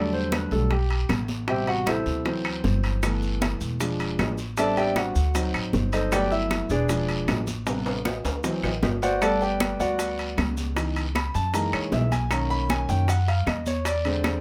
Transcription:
Already playing: upright bass E2, grand piano D3 F#3 G3 A3 D5
0.13 grand piano C5, high bongo, high conga
0.32 grand piano B4, high bongo, high conga, high timbale, short guiro, claves
0.51 upright bass B1, grand piano D3 F#3 G3 A3 A4, high bongo, high conga, short guiro
0.70 grand piano G4, high bongo, high conga, high timbale, long guiro
0.90 high bongo, high conga, high timbale
1.09 upright bass A1, high bongo, low bongo, high conga, high timbale, short guiro, claves
1.28 high conga, short guiro
1.48 grand piano B2 C3 G3 G4 C5 E5 G5, high bongo, high conga, high timbale, long guiro
1.67 grand piano F#4 F#5, high bongo, high conga, high timbale
1.86 grand piano E4 A4 C5 E5, high bongo, high conga, high timbale, short guiro, claves
2.06 upright bass D2, high bongo, high conga, short guiro
2.25 grand piano E3 F#3 C4, high bongo, high conga, high timbale, long guiro
2.45 high bongo, high conga, high timbale, claves
2.64 upright bass G1, high bongo, low bongo, high conga, short guiro
2.83 high timbale, short guiro
3.03 grand piano E3 A3 B3, high bongo, high conga, high timbale, long guiro, claves, maracas
3.22 high bongo, high conga, maracas
3.41 high bongo, high conga, high timbale, short guiro, claves, maracas
3.61 upright bass E1, high bongo, high conga, short guiro, maracas
3.80 grand piano F3 G#3 D4, high bongo, high conga, high timbale, long guiro, maracas
4.00 high bongo, high conga, high timbale, maracas
4.19 upright bass A1, high bongo, low bongo, high conga, high timbale, low timbale, short guiro, claves, maracas
4.38 short guiro, maracas
4.57 grand piano G3 B3 C4 D4 A4 D5 E5 A5, high bongo, high timbale, long guiro, maracas
4.77 grand piano G4 D5 E5 G5, high bongo, high conga, high timbale, maracas
4.96 grand piano F#4 F#5, high bongo, high conga, high timbale, short guiro, claves, maracas
5.15 upright bass D2, high bongo, high conga, short guiro, maracas
5.34 grand piano F#3 C4 D#4, high bongo, high conga, high timbale, long guiro, maracas
5.54 upright bass A1, high bongo, high conga, high timbale, claves, maracas
5.73 upright bass G1, high bongo, low bongo, high conga, short guiro, maracas
5.92 grand piano D#4 A4 C5 D#5, high timbale, short guiro, maracas
6.12 grand piano F#3 A3 B3 G4 B4 D5 G5, high bongo, high conga, high timbale, long guiro, claves, maracas
6.32 grand piano E4 E5, high bongo, high conga, maracas
6.50 high bongo, high conga, high timbale, short guiro, claves, maracas
6.70 upright bass E1, grand piano D4 G#4 B4 D5, high bongo, high conga, short guiro, maracas
6.89 grand piano F3 G#3 D4, high bongo, high conga, high timbale, long guiro, maracas
7.09 high bongo, high conga, high timbale, maracas
7.28 upright bass A1, high bongo, low bongo, high conga, high timbale, low timbale, short guiro, claves, maracas
7.47 high conga, short guiro, maracas
7.67 grand piano C3 G3 B3, high bongo, high timbale, long guiro, maracas
7.86 high bongo, high conga, high timbale, maracas
8.05 high bongo, high conga, low timbale, short guiro, claves, maracas
8.24 upright bass D2, high bongo, high conga, high timbale, short guiro, maracas
8.44 grand piano E3 F#3 C4, high bongo, high conga, low timbale, long guiro, maracas
8.63 upright bass A1, high bongo, high conga, low timbale, claves, maracas
8.82 upright bass G1, high bongo, low bongo, high conga, low timbale, short guiro, maracas
9.02 grand piano F#4 C5 D5 F#5, low timbale, short guiro, maracas
9.21 grand piano G3 A3 B3 A4 D5 F#5 A5, high bongo, high timbale, long guiro, claves, maracas
9.41 grand piano G4 B4 D5 G5, high bongo, high conga, maracas
9.60 high bongo, high conga, high timbale, short guiro, claves, maracas
9.80 upright bass D2, grand piano F#4 B4 D5 F#5, high bongo, high conga, short guiro, maracas
9.99 high bongo, high conga, high timbale, long guiro, maracas
10.19 high bongo, high conga, high timbale, maracas
10.37 upright bass C#2, high bongo, low bongo, high conga, high timbale, short guiro, claves, maracas
10.57 high conga, short guiro, maracas
10.76 grand piano E3 B3 D#4, high bongo, high conga, high timbale, long guiro, maracas
10.96 high bongo, high conga, high timbale, maracas
11.15 grand piano B5, high bongo, high conga, high timbale, short guiro, claves, maracas
11.34 upright bass F#2, grand piano A5, high bongo, high conga, short guiro, maracas
11.54 grand piano E3 G#3 A#3 D#4 A#5, high bongo, high conga, high timbale, long guiro, maracas
11.73 upright bass C#2, grand piano C#5, high bongo, high conga, high timbale, claves, maracas
11.92 upright bass B1, grand piano E5, high bongo, low bongo, high conga, low timbale, short guiro, maracas
12.12 grand piano G#5, high conga, high timbale, short guiro, maracas
12.31 grand piano D#3 A#3 C#4 A#5, high bongo, high conga, high timbale, long guiro, claves, maracas
12.50 grand piano B5, high bongo, high conga, maracas
12.69 grand piano G#5, high bongo, high conga, high timbale, short guiro, claves, maracas
12.89 upright bass F#2, grand piano D#3 A#3 C#4 G5, high bongo, high conga, short guiro, maracas
13.08 grand piano F#5, high bongo, high conga, high timbale, long guiro, maracas
13.28 grand piano F5, high bongo, high conga, high timbale, maracas
13.46 upright bass E2, grand piano D#5, high bongo, low bongo, high conga, high timbale, short guiro, claves, maracas
13.66 grand piano C#5, high conga, short guiro, maracas
13.85 grand piano D5, high bongo, high conga, high timbale, long guiro, maracas
14.05 grand piano D3 G#3 C4, high bongo, high conga, high timbale, maracas
14.24 high bongo, high conga, high timbale, short guiro, claves, maracas

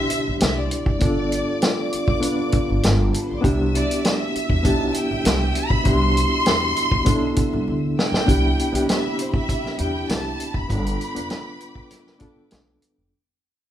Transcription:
Already playing: french horn section B2 G3 E4, reed electric piano B2 D4 E4 G4, string section C5 C6, violin section E5
0.10 closed hi-hat
0.28 upright bass B1
0.40 upright bass C2, violin section E5, snare, closed hi-hat
0.57 violin section D5
0.71 closed hi-hat
0.86 upright bass F1, violin section D5, kick
0.99 upright bass G1, french horn section D3 F4, reed electric piano B3 D4 F4 A4, string section D5 D6, kick, closed hi-hat
1.32 closed hi-hat
1.62 snare, closed hi-hat
1.93 muted upright bass stroke, closed hi-hat
2.08 upright bass B1, kick
2.20 reed electric piano B3 D4 F4 B4, closed hi-hat
2.52 muted upright bass stroke, kick, closed hi-hat
2.70 upright bass G1
2.83 upright bass G1, snare, closed hi-hat
3.12 string section A4 A5, closed hi-hat
3.21 string section B4 B5
3.29 upright bass B1, string section C5 C6
3.36 string section D5 D6
3.41 upright bass C2, french horn section B2 B3 E4, reed electric piano B3 D4 E4 G4, string section E5 E6, kick, closed hi-hat
3.75 violin section D5, closed hi-hat
3.91 closed hi-hat
4.05 snare, closed hi-hat
4.19 violin section E5
4.36 muted upright bass stroke, closed hi-hat
4.50 upright bass E2, kick
4.63 upright bass B1, reed electric piano B3 D4 E4 G4, violin section A5, kick, closed hi-hat
4.89 violin section A5
4.94 violin section G5, closed hi-hat
5.11 upright bass B1
5.25 upright bass C2, snare, closed hi-hat
5.55 violin section B5, closed hi-hat
5.70 upright bass B1, kick
5.83 upright bass C2, reed electric piano B3 D4 E4 G4, violin section C6, kick, closed hi-hat
6.17 closed hi-hat
6.46 upright bass E2, snare, closed hi-hat
6.76 closed hi-hat
6.92 upright bass B1, kick
7.05 upright bass B1, reed electric piano B3 D4 E4 A4, kick, closed hi-hat
7.36 kick, closed hi-hat
7.53 upright bass C2
7.68 upright bass D2
7.98 violin section G5, snare
8.12 upright bass B1, snare
8.26 upright bass C2, french horn section C3 G3 B3 E4, reed electric piano B3 D4 E4 G4, string section G4 E5 B5, kick, closed hi-hat
8.59 closed hi-hat
8.72 upright bass B1, reed electric piano B3 D4 E4 G4, closed hi-hat
8.89 violin section E5, snare, closed hi-hat
9.19 violin section C5, closed hi-hat
9.34 violin section E5, kick
9.49 kick, closed hi-hat
9.66 snare
9.78 upright bass E2, reed electric piano B3 D4 E4, violin section G5, closed hi-hat
9.82 reed electric piano G4
10.09 upright bass C2, violin section A5, snare, closed hi-hat
10.40 closed hi-hat
10.54 upright bass F1, violin section B5, kick
10.69 upright bass G1, french horn section D3 F4, reed electric piano B3 D4 F4 A4, string section B4 G5 D6, kick, closed hi-hat
10.86 closed hi-hat
11.01 closed hi-hat
11.15 upright bass F1, reed electric piano B3 D4 F4 B4, closed hi-hat
11.30 snare, closed hi-hat
11.61 closed hi-hat
11.76 kick
11.91 snare, closed hi-hat
12.07 snare
12.19 reed electric piano B3 D4 F4 A4, kick, closed hi-hat
12.51 upright bass B1, snare, closed hi-hat
12.82 closed hi-hat
12.98 upright bass F1

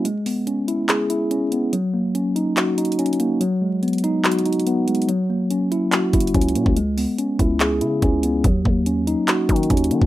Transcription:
0.05 tine electric piano G#3, closed hi-hat
0.26 tine electric piano B3, open hi-hat
0.47 tine electric piano C#4, closed hi-hat
0.68 tine electric piano E4, closed hi-hat
0.89 tine electric piano G#4, clap, closed hi-hat
1.10 tine electric piano E4, closed hi-hat
1.31 tine electric piano C#4, closed hi-hat
1.52 tine electric piano B3, closed hi-hat
1.73 tine electric piano F#3, closed hi-hat
1.94 tine electric piano A#3
2.15 tine electric piano C#4, closed hi-hat
2.36 tine electric piano D#4, closed hi-hat
2.57 tine electric piano F#4, clap, closed hi-hat
2.78 tine electric piano D#4, closed hi-hat
2.85 closed hi-hat
2.92 closed hi-hat
2.99 tine electric piano C#4, closed hi-hat
3.06 closed hi-hat
3.13 closed hi-hat
3.20 tine electric piano A#3, closed hi-hat
3.41 tine electric piano F#3, closed hi-hat
3.62 tine electric piano G#3
3.83 tine electric piano B3, closed hi-hat
3.88 closed hi-hat
3.93 closed hi-hat
3.98 closed hi-hat
4.04 tine electric piano D#4, closed hi-hat
4.25 tine electric piano F#4, clap, closed hi-hat
4.32 closed hi-hat
4.39 closed hi-hat
4.46 tine electric piano D#4, closed hi-hat
4.53 closed hi-hat
4.60 closed hi-hat
4.67 tine electric piano B3, closed hi-hat
4.88 tine electric piano G#3, closed hi-hat
4.95 closed hi-hat
5.02 closed hi-hat
5.09 tine electric piano F#3, closed hi-hat
5.30 tine electric piano A#3
5.50 tine electric piano C#4, closed hi-hat
5.72 tine electric piano E4, closed hi-hat
5.92 tine electric piano F#4, clap, closed hi-hat
6.13 808-style bass F#1, tine electric piano E4, kick, closed hi-hat
6.20 closed hi-hat
6.27 closed hi-hat
6.34 808-style bass C#2, tine electric piano C#4, kick, closed hi-hat
6.41 closed hi-hat
6.48 closed hi-hat
6.55 808-style bass A#2, tine electric piano A#3, closed hi-hat
6.66 808-style bass C#2, kick
6.76 tine electric piano G#3, closed hi-hat
6.97 tine electric piano B3, open hi-hat
7.18 tine electric piano C#4, closed hi-hat
7.39 808-style bass C#2, tine electric piano E4, kick, closed hi-hat
7.60 tine electric piano G#4, clap, closed hi-hat
7.81 808-style bass C#3, tine electric piano E4, closed hi-hat
8.02 808-style bass C#2, tine electric piano C#4, kick, closed hi-hat
8.23 tine electric piano B3, closed hi-hat
8.44 808-style bass D#2, tine electric piano F#3, kick, closed hi-hat
8.65 808-style bass D#2, tine electric piano A#3, kick
8.86 tine electric piano C#4, closed hi-hat
9.07 tine electric piano D#4, closed hi-hat
9.28 tine electric piano F#4, clap, closed hi-hat
9.49 808-style bass D#3, tine electric piano D#4, kick, closed hi-hat
9.56 closed hi-hat
9.63 closed hi-hat
9.70 808-style bass D#2, tine electric piano C#4, kick, closed hi-hat
9.77 closed hi-hat
9.84 closed hi-hat
9.91 808-style bass D#3, tine electric piano A#3, closed hi-hat
10.02 808-style bass G#1, kick

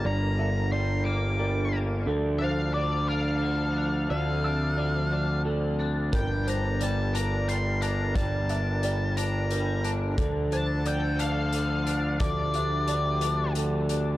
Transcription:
Already playing: clean electric guitar G3 A#3, analog synth pad G3 D4 A#4
0.05 picked electric bass G1, clean electric guitar G2, felt piano D5, lead electric guitar A#5
0.39 clean electric guitar D3, felt piano E5
0.72 clean electric guitar G3, felt piano D5, lead electric guitar C6
1.05 clean electric guitar A#3, lead electric guitar D6
1.39 clean electric guitar G3, felt piano A#4
1.73 clean electric guitar A#3
2.07 picked electric bass D2, clean electric guitar D3, analog synth pad F3 A4, felt piano A4
2.39 clean electric guitar D4, felt piano C5, lead electric guitar F5
2.74 clean electric guitar D3, lead electric guitar D5, felt piano D5
3.09 clean electric guitar D4, lead electric guitar F5
3.43 clean electric guitar D3
3.77 clean electric guitar D4
4.10 picked electric bass D2, clean electric guitar D3, analog synth pad C4, felt piano D5, lead electric guitar F5
4.44 clean electric guitar D4, felt piano E6
4.77 clean electric guitar D3, felt piano D5
5.12 clean electric guitar D4
5.45 clean electric guitar D3, felt piano A4
5.79 clean electric guitar D4
6.12 picked electric bass G1, clean electric guitar G3, analog synth pad G3 D4 A#4, felt piano A#4, lead electric guitar G5, kick, closed hi-hat
6.47 clean electric guitar D4, felt piano C5, lead electric guitar A#5, closed hi-hat
6.80 clean electric guitar G3, felt piano D5, lead electric guitar A5, closed hi-hat
7.14 clean electric guitar D4, lead electric guitar A#5, closed hi-hat
7.49 clean electric guitar G3, lead electric guitar C6, closed hi-hat
7.81 clean electric guitar D4, lead electric guitar A#5, closed hi-hat
8.15 picked electric bass G1, clean electric guitar G3, felt piano D5, lead electric guitar A5, kick, closed hi-hat
8.49 clean electric guitar D4, felt piano E5, closed hi-hat
8.83 clean electric guitar G3, felt piano D5, closed hi-hat
9.17 clean electric guitar D4, lead electric guitar A#5, closed hi-hat
9.51 clean electric guitar G3, felt piano A#4, closed hi-hat
9.84 clean electric guitar D4, closed hi-hat
10.18 picked electric bass D2, clean electric guitar D3, analog synth pad F3 A4, felt piano A4, kick, closed hi-hat
10.52 clean electric guitar D4, felt piano C5, lead electric guitar A5, closed hi-hat
10.86 clean electric guitar D3, felt piano D5, lead electric guitar G5, closed hi-hat
11.19 clean electric guitar D4, lead electric guitar F5, closed hi-hat
11.53 clean electric guitar D3, closed hi-hat
11.87 clean electric guitar D4, closed hi-hat
12.20 picked electric bass D2, clean electric guitar D3, analog synth pad G4, felt piano D5, lead electric guitar D5, kick, closed hi-hat
12.54 clean electric guitar D4, felt piano E5, closed hi-hat
12.88 clean electric guitar D3, felt piano D5, closed hi-hat
13.21 clean electric guitar D4, closed hi-hat
13.55 clean electric guitar D3, felt piano A4, closed hi-hat
13.89 clean electric guitar D4, closed hi-hat

